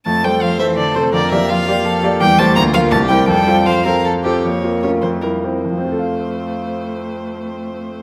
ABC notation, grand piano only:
X:1
M:3/4
L:1/8
Q:1/4=156
K:F
V:1 name="Grand piano"
F,, [A,Ac]2 [A,Ac]2 [A,Ac] | F,, [B,Gd]2 [B,Gd]2 [B,Gd] | E,, [G,Gc] D,, [B,FB] C,, [CEB] | F,, [CFA]2 [CFA]2 [CFA] |
F,, [FB] [_DFB] F,, [EB] [CEB] | [F,,F,CFAf]6- | [F,,F,CFAf]6 |]